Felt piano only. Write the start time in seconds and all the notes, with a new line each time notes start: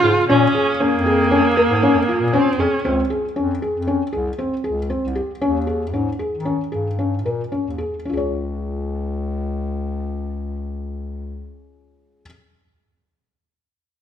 0.03 G#4
0.29 C#4
0.55 G#4
0.80 C#4
1.06 G#4
1.31 C#4
1.57 A#4
1.83 C#4
2.09 F4
2.33 C#4
2.59 G#4
2.85 C4
3.10 G#4
3.36 C#4
3.62 G#4
3.87 C#4
4.13 G#4
4.39 C4
4.64 G#4
4.90 C4
5.15 G4
5.42 C#4
5.67 G#4
5.94 C#4
6.19 G#4
6.45 C#4
6.72 G#4
6.99 C#4
7.26 A#4
7.52 C#4
7.78 G#4
8.05 C#4
8.09 F4 G#4
8.17 C#5